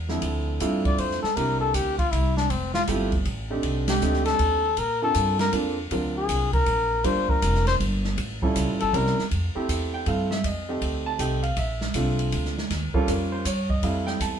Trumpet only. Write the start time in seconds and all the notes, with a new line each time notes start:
0.86 D5
0.99 C5
1.22 A4
1.35 A#4
1.60 A4
1.75 G4
1.98 F4
2.11 E4
2.37 D4
2.50 C4
2.74 F4
3.89 G4
4.26 A4
4.78 A#4
5.03 A4
5.40 A#4
6.17 G#4
6.53 A#4
7.04 C5
7.29 A#4
7.67 C5
8.81 A4
8.96 A#4